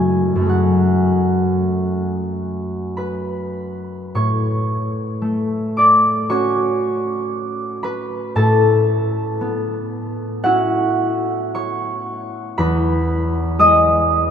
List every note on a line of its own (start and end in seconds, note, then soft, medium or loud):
0.00 0.34 F#2 soft
0.00 0.38 A3 soft
0.00 0.41 C#4 soft
0.00 0.45 G#4 soft
0.00 2.97 G#5 medium
0.35 4.12 F#2 soft
0.35 4.29 A3 soft
0.42 4.32 C#4 soft
0.42 4.17 G#4 soft
0.49 2.97 F#5 medium
2.97 4.19 B4 soft
2.97 4.91 B5 medium
4.15 8.05 A2 soft
4.15 6.30 C#5 soft
4.15 6.28 C#6 medium
5.22 9.12 A3 soft
5.77 9.68 D5 medium
5.77 6.67 D6 medium
6.29 10.19 C#4 soft
6.29 10.20 F#4 soft
6.29 10.21 C#5 medium
6.29 10.20 C#6 medium
7.83 11.74 B4 medium
7.83 8.73 B5 medium
8.35 12.25 A2 medium
8.35 12.27 A4 medium
8.35 12.26 A5 medium
9.41 13.31 B3 soft
10.44 14.30 C#4 soft
10.44 14.30 E4 soft
10.44 14.30 F#4 medium
10.44 14.30 F#5 medium
11.55 14.30 C#5 medium
11.55 14.30 C#6 medium
12.58 14.30 E2 medium
12.58 14.30 B4 medium
12.58 14.30 B5 medium
13.59 14.30 G#3 soft
13.59 14.30 D#5 medium
13.59 14.30 D#6 loud